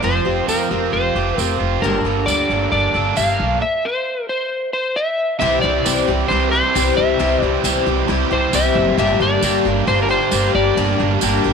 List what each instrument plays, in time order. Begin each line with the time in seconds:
0.03 upright bass F1, twelve-string acoustic guitar F3 C4 F4 G4, electric slide guitar C5
0.25 upright bass F1, twelve-string acoustic guitar C4 F4 G4
0.48 upright bass F1, twelve-string acoustic guitar F3 C4 F4 G4, electric slide guitar A#4, tambourine
0.71 upright bass F1, twelve-string acoustic guitar C4 F4 G4
0.93 upright bass F1, overdriven electric guitar F4, electric slide guitar C5
1.15 upright bass F1, twelve-string acoustic guitar C4 F4 G4
1.38 upright bass F1, twelve-string acoustic guitar F3 C4 F4 G4, electric slide guitar A#4, tambourine
1.59 upright bass F1, overdriven electric guitar F4
1.82 upright bass G1, twelve-string acoustic guitar G2 D3 G3 A#3 D4 A4, electric slide guitar A#4
2.04 upright bass G1, overdriven electric guitar D3, twelve-string acoustic guitar G3 A#3 D4 A4
2.26 upright bass D2, twelve-string acoustic guitar G3 A#3 D4 A4, electric slide guitar D5, tambourine
2.50 upright bass G1, twelve-string acoustic guitar G3 A#3 D4 A4
2.72 upright bass G1, overdriven electric guitar D4, electric slide guitar D5
2.94 upright bass G1, twelve-string acoustic guitar G3 A#3 D4 A4
3.16 upright bass G1, twelve-string acoustic guitar G3 A#3 D4 A4, electric slide guitar F5, tambourine
3.39 upright bass B1, overdriven electric guitar D4
3.62 electric slide guitar E5
3.85 electric slide guitar C5
4.29 electric slide guitar C5
4.73 electric slide guitar C5
4.96 electric slide guitar E5
5.39 upright bass C2, twelve-string acoustic guitar C3 G3 C4 E4 G4, overdriven electric guitar E3, electric slide guitar E5
5.61 upright bass C2, twelve-string acoustic guitar C4 E4 G4, electric slide guitar D5
5.66 overdriven electric guitar G3
5.85 upright bass C2, twelve-string acoustic guitar C3 G3 C4 E4 G4, overdriven electric guitar E3, tambourine
6.08 upright bass C2, twelve-string acoustic guitar C4 E4 G4
6.28 upright bass C2, overdriven electric guitar C3 E3, twelve-string acoustic guitar G3 C4 E4, electric slide guitar C5
6.32 twelve-string acoustic guitar G4
6.51 overdriven electric guitar G3, twelve-string acoustic guitar C4 E4 G4, electric slide guitar C5
6.74 upright bass C2, twelve-string acoustic guitar C3 G3 C4 E4 G4, overdriven electric guitar E3, tambourine
6.95 upright bass C2, overdriven electric guitar G3 C4 G4, electric slide guitar E5
7.19 upright bass C2, twelve-string acoustic guitar C3 G3 C4 E4 G4, overdriven electric guitar E3
7.42 upright bass C2, overdriven electric guitar G3, twelve-string acoustic guitar C4 E4 G4, electric slide guitar D5
7.62 upright bass C2, twelve-string acoustic guitar C3 G3 C4 E4 G4, overdriven electric guitar E3, tambourine
7.86 upright bass C2, twelve-string acoustic guitar C4 E4 G4
8.07 upright bass C2, overdriven electric guitar C3 E3, twelve-string acoustic guitar G3 C4 E4 G4
8.31 upright bass C2, overdriven electric guitar G3, twelve-string acoustic guitar C4 E4 G4, electric slide guitar C5
8.52 upright bass C2, twelve-string acoustic guitar C3 G3 C4 E4 G4, overdriven electric guitar E3, electric slide guitar E5, tambourine
8.75 upright bass F#1, overdriven electric guitar G3 C4 G4
8.98 upright bass G1, twelve-string acoustic guitar G2 D3 G3 A#3 D4 G4, electric slide guitar E5
9.20 upright bass G1, twelve-string acoustic guitar G3 A#3 D4 G4, electric slide guitar D5
9.42 upright bass G1, twelve-string acoustic guitar G2 D3 G3 A#3 D4 G4, tambourine
9.65 upright bass G1, twelve-string acoustic guitar G3 A#3 D4 G4
9.86 upright bass G1, overdriven electric guitar G2 D3, twelve-string acoustic guitar G3 A#3 D4 G4, electric slide guitar C5
10.03 electric slide guitar A#4
10.09 twelve-string acoustic guitar G3 A#3 D4 G4, electric slide guitar C5
10.31 upright bass G1, twelve-string acoustic guitar G2 D3 G3 A#3 D4 G4, tambourine
10.54 upright bass G1, overdriven electric guitar G3 A#3 D4 G4, electric slide guitar D5
10.77 upright bass G1, twelve-string acoustic guitar G2 D3 G3 A#3 D4 G4
10.99 upright bass G1, twelve-string acoustic guitar G3 A#3 D4 G4
11.21 upright bass G1, twelve-string acoustic guitar G2 D3 G3 A#3 D4 G4, tambourine
11.44 upright bass G1, twelve-string acoustic guitar G3 A#3 D4 G4